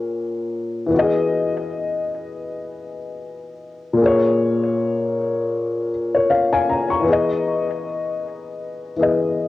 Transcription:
0.00 0.84 A#2 medium
0.00 0.86 A#3 medium
0.00 0.88 G#4 medium
0.00 0.91 C#5 medium
0.86 3.92 E3 medium
0.91 3.95 B3 medium
0.91 1.00 F#4 medium
0.99 4.00 G#4 medium
0.99 3.99 D#5 medium
3.93 7.00 A#2 medium
3.97 7.02 A#3 medium
4.01 7.04 G#4 medium
4.06 5.91 C#5 medium
6.15 6.30 A#4 soft
6.15 6.29 C#5 medium
6.30 6.51 C#5 medium
6.30 6.51 F5 medium
6.53 6.68 F5 medium
6.53 6.68 G#5 medium
6.69 6.89 A#5 medium
6.90 7.27 A#5 soft
6.90 7.27 C#6 medium
7.00 8.92 E3 medium
7.04 8.94 B3 medium
7.09 8.96 G#4 medium
7.09 8.98 D#5 medium
8.96 9.48 E3 medium
8.96 9.48 B3 soft
9.01 9.48 G#4 medium
9.01 9.48 D#5 medium

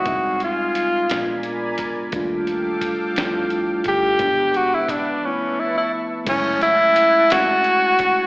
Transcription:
0.00 0.96 G#3 medium
0.00 0.42 F#4 medium
0.00 1.05 D#5 medium
0.05 0.71 F1 loud
0.05 0.99 G3 medium
0.05 0.97 C4 medium
0.05 0.98 D#4 medium
0.05 1.08 F5 medium
0.05 1.08 G#5 medium
0.05 1.08 C6 medium
0.05 kick loud
0.05 closed hi-hat medium
0.40 closed hi-hat soft
0.44 1.42 F4 medium
0.75 muted fingered electric bass stroke soft
0.75 closed hi-hat medium
1.07 1.75 A#1 medium
1.07 2.00 G#3 medium
1.07 2.00 B3 medium
1.07 2.01 D4 medium
1.07 2.12 A#4 medium
1.07 2.12 D5 medium
1.07 2.12 G#5 medium
1.07 2.12 B5 medium
1.07 closed hi-hat medium
1.11 2.02 F4 medium
1.11 snare medium
1.43 closed hi-hat soft
1.78 kick medium
1.78 closed hi-hat medium
2.11 2.78 D#2 loud
2.11 3.03 G3 medium
2.11 3.04 A3 medium
2.11 3.05 D4 medium
2.11 4.18 A4 medium
2.11 4.18 F5 medium
2.11 4.18 G5 medium
2.11 4.18 D6 medium
2.11 kick loud
2.11 closed hi-hat medium
2.16 3.06 F4 medium
2.47 closed hi-hat soft
2.81 muted fingered electric bass stroke soft
2.81 kick medium
2.81 closed hi-hat medium
3.14 3.82 F2 medium
3.14 4.07 G3 medium
3.14 4.07 A3 medium
3.14 4.08 D4 medium
3.14 snare loud
3.14 closed hi-hat medium
3.20 3.24 E4 medium
3.26 4.13 F4 medium
3.50 closed hi-hat soft
3.84 4.17 G1 medium
3.84 4.58 G4 loud
3.84 kick medium
3.84 closed hi-hat medium
4.18 4.85 G#1 loud
4.18 5.10 D3 medium
4.18 5.11 G#3 medium
4.18 5.12 B3 medium
4.18 6.25 B4 medium
4.18 5.23 F#5 medium
4.18 5.23 D6 medium
4.18 kick loud
4.18 closed hi-hat medium
4.23 5.13 D4 medium
4.54 4.76 F#4 loud
4.54 closed hi-hat soft
4.75 4.92 E4 medium
4.88 5.27 D4 medium
4.88 muted fingered electric bass stroke soft
4.88 kick medium
4.88 closed hi-hat medium
5.22 6.14 F3 medium
5.22 6.15 A3 medium
5.22 6.16 B3 medium
5.22 5.61 C#4 medium
5.22 6.26 E5 medium
5.22 6.26 A5 medium
5.22 6.25 C#6 medium
5.27 6.16 E4 medium
5.60 5.76 E4 medium
5.77 5.92 E4 medium
6.25 8.00 F#1 loud
6.25 7.17 G#3 medium
6.25 7.18 A3 medium
6.25 6.60 C#4 loud
6.25 7.19 C#4 medium
6.25 8.27 F#5 medium
6.25 8.27 G#5 medium
6.25 8.27 A5 medium
6.25 kick loud
6.25 closed hi-hat medium
6.25 crash loud
6.31 7.20 E4 loud
6.62 7.33 E4 loud
6.62 closed hi-hat medium
6.96 closed hi-hat medium
7.29 8.21 G#3 medium
7.29 8.22 A3 medium
7.29 8.23 C#4 medium
7.29 8.27 F#4 loud
7.29 snare loud
7.29 closed hi-hat medium
7.34 8.24 F#4 medium
7.64 closed hi-hat medium
7.99 8.27 C2 loud
7.99 kick medium
7.99 closed hi-hat medium

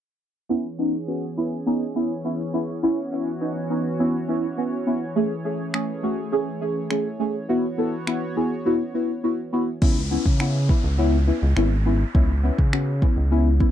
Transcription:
0.49 9.78 E3 medium
0.49 0.67 B3 loud
0.49 5.12 B3 medium
0.49 9.78 C#4 medium
0.49 0.67 C#4 loud
0.49 0.67 E4 loud
0.49 2.80 G#4 medium
0.49 7.45 C#5 medium
0.78 0.96 B3 medium
0.78 0.96 C#4 medium
0.78 0.96 D#4 medium
1.08 1.25 B3 medium
1.08 1.25 C#4 medium
1.08 1.25 F#4 medium
1.37 1.54 B3 medium
1.37 1.54 C#4 medium
1.37 1.55 E4 medium
1.66 1.83 B3 loud
1.66 1.83 C#4 loud
1.66 1.84 D#4 loud
1.95 2.13 B3 medium
1.95 2.13 C#4 medium
1.95 2.13 E4 medium
2.24 2.42 B3 medium
2.24 2.42 C#4 medium
2.24 2.42 E4 medium
2.53 2.71 B3 medium
2.53 2.71 C#4 medium
2.53 2.71 E4 medium
2.82 3.00 B3 loud
2.82 3.00 C#4 loud
2.82 3.00 E4 loud
2.82 5.14 F#4 medium
3.12 3.29 B3 medium
3.12 3.29 C#4 medium
3.12 3.29 E4 medium
3.41 3.58 B3 medium
3.41 3.58 C#4 medium
3.41 3.58 D#4 medium
3.70 3.87 B3 medium
3.70 3.87 C#4 medium
3.70 3.87 D#4 medium
3.99 4.16 B3 loud
3.99 4.17 C#4 loud
3.99 4.17 E4 loud
4.28 4.46 B3 medium
4.28 4.46 C#4 medium
4.28 4.46 E4 medium
4.57 4.75 B3 medium
4.57 4.75 C#4 medium
4.57 4.75 F#4 medium
4.86 5.04 B3 medium
4.86 5.04 C#4 medium
4.86 5.04 E4 medium
5.16 5.33 A3 loud
5.16 7.46 A3 medium
5.16 5.33 C#4 loud
5.16 7.46 G#4 medium
5.16 5.33 G#4 loud
5.44 5.62 A3 medium
5.44 5.62 C#4 medium
5.44 5.62 G#4 medium
5.74 5.91 A3 medium
5.74 5.91 C#4 medium
5.74 5.91 G#4 medium
5.74 finger snap loud
6.03 6.20 A3 medium
6.03 6.20 C#4 medium
6.03 6.20 F#4 medium
6.32 6.49 A3 loud
6.32 6.49 C#4 loud
6.32 6.50 G#4 loud
6.61 6.78 A3 medium
6.61 6.78 C#4 medium
6.61 6.79 G#4 medium
6.90 7.08 A3 medium
6.90 7.08 C#4 medium
6.90 7.08 G#4 medium
6.90 finger snap loud
7.19 7.37 A3 medium
7.19 7.37 C#4 medium
7.19 7.37 G#4 medium
7.49 7.66 B3 loud
7.49 9.79 B3 medium
7.49 7.66 E4 loud
7.49 9.79 F#4 medium
7.49 7.66 F#4 loud
7.49 9.79 C#5 medium
7.78 7.95 B3 medium
7.78 7.95 E4 medium
7.78 7.95 A4 medium
8.07 8.24 B3 medium
8.07 8.24 E4 medium
8.07 8.24 F#4 medium
8.07 finger snap loud
8.36 8.53 B3 medium
8.36 8.54 E4 medium
8.36 8.54 G#4 medium
8.65 8.82 B3 loud
8.65 8.83 E4 loud
8.65 8.83 F#4 loud
8.94 9.12 B3 medium
8.94 9.12 E4 medium
8.94 9.12 F#4 medium
9.23 9.41 B3 medium
9.23 9.41 E4 medium
9.23 9.41 F#4 medium
9.52 9.70 B3 medium
9.52 9.70 E4 medium
9.52 9.70 F#4 loud
9.82 10.18 C#2 loud
9.82 9.99 B3 loud
9.82 9.99 C#4 loud
9.82 9.99 E4 loud
9.82 kick loud
9.82 crash medium
9.82 downlifter medium
10.11 10.28 B3 medium
10.11 10.28 C#4 medium
10.11 10.28 E4 loud
10.26 10.73 C#3 medium
10.26 kick medium
10.40 10.57 B3 medium
10.40 10.57 C#4 medium
10.40 10.57 E4 medium
10.40 finger snap loud
10.69 10.86 B3 medium
10.69 10.86 C#4 medium
10.69 10.87 E4 medium
10.69 kick medium
10.84 11.32 C#2 medium
10.98 11.15 B3 loud
10.98 11.15 C#4 loud
10.98 11.16 E4 loud
11.27 11.44 B3 medium
11.27 11.45 C#4 medium
11.27 11.45 E4 medium
11.42 11.54 C#2 medium
11.56 12.05 G#1 medium
11.56 11.74 B3 medium
11.56 11.74 C#4 medium
11.56 11.74 E4 medium
11.56 finger snap loud
11.85 12.03 B3 medium
11.85 12.03 C#4 medium
11.85 12.03 E4 medium
12.14 12.51 C#2 loud
12.14 12.32 B3 loud
12.14 12.32 C#4 loud
12.14 12.32 E4 loud
12.14 kick loud
12.43 12.61 B3 medium
12.43 12.61 C#4 medium
12.43 12.61 E4 medium
12.59 13.06 C#3 medium
12.59 kick medium
12.72 12.90 B3 medium
12.72 12.90 C#4 medium
12.72 12.90 F#4 medium
12.72 finger snap loud
13.02 13.19 B3 medium
13.02 13.19 C#4 medium
13.02 13.19 E4 medium
13.02 kick medium
13.17 13.65 C#2 medium
13.31 13.48 B3 loud
13.31 13.48 C#4 loud
13.31 13.49 E4 loud
13.60 13.71 B3 medium
13.60 13.71 C#4 medium
13.60 13.71 E4 loud
13.60 kick medium

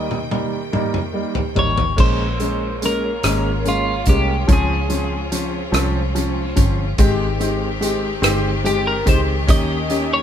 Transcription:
0.00 1.52 D#2 medium
0.00 1.96 C3 medium
0.00 1.94 D#3 medium
0.00 0.16 G3 medium
0.00 0.16 A#3 soft
0.00 0.16 D#4 medium
0.00 0.39 D#5 medium
0.00 1.94 G5 medium
0.11 high tom soft
0.31 0.57 G3 medium
0.31 0.57 A#3 soft
0.31 0.58 D#4 medium
0.31 high tom medium
0.72 0.99 G3 medium
0.72 0.99 A#3 medium
0.72 0.99 D#4 medium
0.72 mid tom medium
0.94 mid tom medium
1.14 1.40 G3 medium
1.14 1.40 A#3 soft
1.14 1.41 D#4 medium
1.35 floor tom medium
1.55 1.95 G#1 medium
1.55 1.82 G3 medium
1.55 1.82 A#3 soft
1.55 1.82 D#4 medium
1.55 2.00 C#5 medium
1.55 floor tom medium
1.78 floor tom medium
1.96 3.20 A#1 medium
1.96 2.23 G#3 medium
1.96 9.45 G#3 soft
1.96 2.24 A#3 medium
1.96 4.47 A#3 medium
1.96 2.24 C#4 medium
1.96 6.95 C#4 medium
1.96 6.96 F4 medium
1.96 2.85 C5 medium
1.96 kick medium
1.96 crash medium
2.39 2.66 G#3 medium
2.39 2.66 A#3 soft
2.39 2.66 C#4 medium
2.39 closed hi-hat soft
2.82 3.08 G#3 medium
2.82 3.08 A#3 soft
2.82 3.08 C#4 medium
2.82 closed hi-hat medium
2.86 3.70 A#4 medium
3.23 4.03 G#1 medium
3.23 3.50 G#3 medium
3.23 3.50 A#3 medium
3.23 3.50 C#4 medium
3.23 cross-stick medium
3.23 closed hi-hat medium
3.65 3.91 G#3 medium
3.65 3.91 A#3 soft
3.65 3.91 C#4 medium
3.65 4.09 F4 medium
3.65 closed hi-hat soft
4.06 4.46 C2 medium
4.06 4.33 G#3 medium
4.06 4.33 A#3 medium
4.06 4.33 C#4 medium
4.06 4.47 G4 medium
4.06 kick medium
4.06 closed hi-hat soft
4.48 5.70 C#2 medium
4.48 4.74 F3 medium
4.48 4.74 C4 medium
4.48 6.97 C4 medium
4.48 4.75 C#4 medium
4.48 kick medium
4.48 closed hi-hat medium
4.53 6.55 G#4 medium
4.89 5.16 F3 medium
4.89 5.16 C4 soft
4.89 5.16 C#4 medium
4.89 closed hi-hat soft
5.32 5.58 F3 medium
5.32 5.58 C4 medium
5.32 5.58 C#4 medium
5.32 closed hi-hat medium
5.72 6.53 C2 medium
5.72 5.99 F3 medium
5.72 5.99 C4 medium
5.72 5.99 C#4 medium
5.72 cross-stick medium
5.72 closed hi-hat medium
6.15 6.41 F3 medium
6.15 6.41 C4 medium
6.15 6.41 C#4 medium
6.15 closed hi-hat soft
6.56 6.96 G1 medium
6.56 6.82 F3 medium
6.56 6.83 C4 medium
6.56 6.83 C#4 medium
6.56 kick medium
6.56 closed hi-hat medium
6.98 8.20 G#1 medium
6.98 10.23 D#3 medium
6.98 7.40 G#3 medium
6.98 7.25 G#3 medium
6.98 7.25 C4 medium
6.98 9.47 C4 medium
6.98 7.41 C4 medium
6.98 7.39 D#4 medium
6.98 7.25 G4 medium
6.98 10.23 G4 medium
6.98 7.38 G4 medium
6.98 kick medium
6.98 closed hi-hat medium
7.39 7.66 G#3 medium
7.39 7.66 C4 medium
7.39 7.81 C4 soft
7.39 7.81 D#4 soft
7.39 7.82 G4 medium
7.39 7.67 G4 medium
7.39 closed hi-hat soft
7.81 8.08 G#3 medium
7.81 8.23 G#3 medium
7.81 8.07 C4 medium
7.81 8.23 C4 medium
7.81 8.22 D#4 medium
7.81 8.08 G4 medium
7.81 8.22 G4 medium
7.81 closed hi-hat medium
8.22 9.02 G1 medium
8.22 8.49 G#3 medium
8.22 8.63 G#3 medium
8.22 8.49 C4 medium
8.22 8.64 C4 medium
8.22 8.64 D#4 medium
8.22 8.49 G4 medium
8.22 8.65 G4 medium
8.22 cross-stick medium
8.22 closed hi-hat medium
8.64 9.06 G#3 medium
8.64 8.91 G#3 medium
8.64 8.91 C4 medium
8.64 9.07 C4 medium
8.64 9.06 D#4 medium
8.64 8.91 G4 medium
8.64 9.05 G4 medium
8.64 8.88 G4 medium
8.64 closed hi-hat soft
8.87 9.08 A#4 medium
9.06 9.46 C#2 medium
9.06 9.33 G#3 medium
9.06 9.33 C4 medium
9.06 9.48 C4 soft
9.06 9.48 D#4 soft
9.06 9.48 G4 soft
9.06 9.33 G4 medium
9.06 9.20 C5 medium
9.06 kick medium
9.06 closed hi-hat medium
9.47 10.23 D#2 medium
9.47 9.90 D#3 medium
9.47 9.90 A#3 medium
9.47 10.23 A#3 medium
9.47 9.74 C#4 medium
9.47 10.23 C#4 medium
9.47 9.89 C#4 medium
9.47 9.75 D#4 medium
9.47 9.75 G4 medium
9.47 9.88 G4 medium
9.47 10.13 D#5 medium
9.47 kick loud
9.47 closed hi-hat medium
9.89 10.23 A#3 soft
9.89 10.16 C#4 medium
9.89 10.23 C#4 soft
9.89 10.16 D#4 medium
9.89 10.23 G4 soft
9.89 10.17 G4 medium
9.89 closed hi-hat soft
10.14 10.23 C#5 medium

